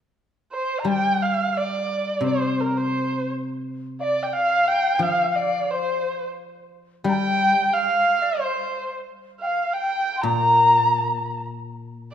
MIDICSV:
0, 0, Header, 1, 4, 480
1, 0, Start_track
1, 0, Tempo, 689655
1, 599, Time_signature, 4, 2, 24, 8
1, 4445, Tempo, 676437
1, 8530, End_track
2, 0, Start_track
2, 0, Title_t, "Dizi"
2, 0, Program_c, 0, 73
2, 2781, Note_on_c, 0, 77, 65
2, 2808, Note_on_c, 0, 74, 70
2, 2815, Note_off_c, 0, 77, 0
2, 2956, Note_off_c, 0, 74, 0
2, 2970, Note_on_c, 0, 79, 54
2, 3021, Note_on_c, 0, 77, 80
2, 3031, Note_off_c, 0, 79, 0
2, 3447, Note_off_c, 0, 77, 0
2, 3456, Note_on_c, 0, 79, 52
2, 3510, Note_on_c, 0, 77, 73
2, 3520, Note_off_c, 0, 79, 0
2, 3980, Note_off_c, 0, 77, 0
2, 3986, Note_on_c, 0, 72, 53
2, 4312, Note_off_c, 0, 72, 0
2, 4940, Note_on_c, 0, 82, 75
2, 4974, Note_on_c, 0, 79, 82
2, 4981, Note_off_c, 0, 82, 0
2, 5401, Note_off_c, 0, 79, 0
2, 5401, Note_on_c, 0, 79, 67
2, 5434, Note_on_c, 0, 77, 73
2, 5441, Note_off_c, 0, 79, 0
2, 5747, Note_on_c, 0, 74, 64
2, 5757, Note_off_c, 0, 77, 0
2, 5864, Note_off_c, 0, 74, 0
2, 5864, Note_on_c, 0, 74, 55
2, 5888, Note_on_c, 0, 72, 60
2, 5895, Note_off_c, 0, 74, 0
2, 6232, Note_off_c, 0, 72, 0
2, 6600, Note_on_c, 0, 79, 64
2, 6633, Note_on_c, 0, 77, 70
2, 6641, Note_off_c, 0, 79, 0
2, 6822, Note_off_c, 0, 77, 0
2, 6826, Note_on_c, 0, 79, 71
2, 7122, Note_off_c, 0, 79, 0
2, 7130, Note_on_c, 0, 84, 57
2, 7174, Note_on_c, 0, 82, 75
2, 7185, Note_off_c, 0, 84, 0
2, 8032, Note_off_c, 0, 82, 0
2, 8530, End_track
3, 0, Start_track
3, 0, Title_t, "Erhu"
3, 0, Program_c, 1, 110
3, 362, Note_on_c, 1, 72, 73
3, 558, Note_on_c, 1, 82, 60
3, 568, Note_off_c, 1, 72, 0
3, 610, Note_on_c, 1, 79, 87
3, 620, Note_off_c, 1, 82, 0
3, 851, Note_on_c, 1, 77, 79
3, 862, Note_off_c, 1, 79, 0
3, 1093, Note_on_c, 1, 74, 85
3, 1104, Note_off_c, 1, 77, 0
3, 1566, Note_off_c, 1, 74, 0
3, 1578, Note_on_c, 1, 72, 68
3, 1814, Note_on_c, 1, 70, 58
3, 1824, Note_off_c, 1, 72, 0
3, 1931, Note_on_c, 1, 72, 66
3, 1941, Note_off_c, 1, 70, 0
3, 2297, Note_off_c, 1, 72, 0
3, 2790, Note_on_c, 1, 74, 74
3, 2944, Note_on_c, 1, 79, 60
3, 2955, Note_off_c, 1, 74, 0
3, 3014, Note_on_c, 1, 77, 90
3, 3025, Note_off_c, 1, 79, 0
3, 3257, Note_on_c, 1, 79, 94
3, 3268, Note_off_c, 1, 77, 0
3, 3445, Note_off_c, 1, 79, 0
3, 3445, Note_on_c, 1, 79, 59
3, 3495, Note_on_c, 1, 77, 81
3, 3506, Note_off_c, 1, 79, 0
3, 3693, Note_off_c, 1, 77, 0
3, 3693, Note_on_c, 1, 77, 58
3, 3727, Note_on_c, 1, 74, 70
3, 3738, Note_off_c, 1, 77, 0
3, 3971, Note_on_c, 1, 72, 71
3, 3982, Note_off_c, 1, 74, 0
3, 4329, Note_off_c, 1, 72, 0
3, 4924, Note_on_c, 1, 79, 100
3, 5407, Note_on_c, 1, 77, 90
3, 5417, Note_off_c, 1, 79, 0
3, 5882, Note_on_c, 1, 72, 73
3, 5893, Note_off_c, 1, 77, 0
3, 6240, Note_off_c, 1, 72, 0
3, 6586, Note_on_c, 1, 77, 74
3, 6820, Note_on_c, 1, 79, 84
3, 6830, Note_off_c, 1, 77, 0
3, 7159, Note_on_c, 1, 82, 90
3, 7170, Note_off_c, 1, 79, 0
3, 8024, Note_off_c, 1, 82, 0
3, 8530, End_track
4, 0, Start_track
4, 0, Title_t, "Guzheng"
4, 0, Program_c, 2, 107
4, 588, Note_on_c, 2, 55, 49
4, 1535, Note_on_c, 2, 48, 47
4, 2042, Note_off_c, 2, 55, 0
4, 3003, Note_off_c, 2, 48, 0
4, 3473, Note_on_c, 2, 53, 53
4, 4911, Note_on_c, 2, 55, 58
4, 4920, Note_off_c, 2, 53, 0
4, 6352, Note_off_c, 2, 55, 0
4, 7175, Note_on_c, 2, 46, 56
4, 8530, Note_off_c, 2, 46, 0
4, 8530, End_track
0, 0, End_of_file